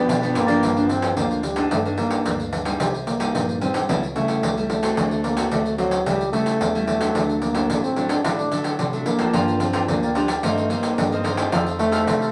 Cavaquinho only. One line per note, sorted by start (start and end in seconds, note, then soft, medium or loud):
0.00 0.20 G4 medium
0.00 0.20 B4 medium
0.00 0.20 D5 medium
0.21 0.33 G4 medium
0.21 0.33 B4 medium
0.21 0.34 D5 medium
0.33 0.47 F4 soft
0.33 0.47 G4 soft
0.33 0.46 B4 medium
0.33 0.45 D5 medium
0.47 0.61 G4 medium
0.47 0.61 B4 medium
0.47 0.60 D5 medium
9.33 9.59 F4 medium
9.33 9.59 A#4 medium
9.33 9.59 D5 medium
9.33 9.60 G5 medium
9.60 9.72 F4 soft
9.60 9.72 A#4 soft
9.60 9.72 D5 medium
9.60 9.73 G5 medium
9.73 9.83 F4 medium
9.73 9.83 A#4 medium
9.73 9.83 D5 medium
9.73 9.83 G5 medium
10.02 10.14 A#4 soft
10.02 10.15 D5 soft
10.02 10.15 G5 medium
10.15 10.28 F4 medium
10.15 10.28 A#4 medium
10.15 10.28 D5 medium
10.15 10.27 G5 medium
10.28 10.42 A#4 soft
10.28 10.42 D5 soft
10.28 10.41 G5 soft
10.43 10.68 D#4 medium
10.43 10.69 A#4 medium
10.43 10.69 C5 medium
10.43 10.70 D#5 medium
10.70 11.10 D#4 medium
10.70 11.10 A#4 medium
10.70 11.10 C5 medium
10.70 11.10 D#5 medium
11.11 11.23 A#4 soft
11.11 11.23 C5 soft
11.11 11.23 D#5 medium
11.23 11.37 D#4 medium
11.23 11.36 A#4 medium
11.23 11.36 C5 medium
11.23 11.35 D#5 medium
11.36 11.50 A#4 soft
11.36 11.50 C5 soft
11.36 11.50 D#5 soft
11.52 11.77 D#4 medium
11.52 11.78 A4 medium
11.52 11.78 C5 medium
11.52 11.79 F5 medium
11.78 11.90 D#4 soft
11.78 11.91 A4 medium
11.78 11.91 C5 medium
11.78 11.91 F5 medium
11.91 12.01 D#4 medium
11.91 12.01 A4 medium
11.91 12.01 C5 medium
11.91 12.02 F5 medium
12.21 12.32 A4 soft
12.21 12.32 C5 soft
12.21 12.32 F5 medium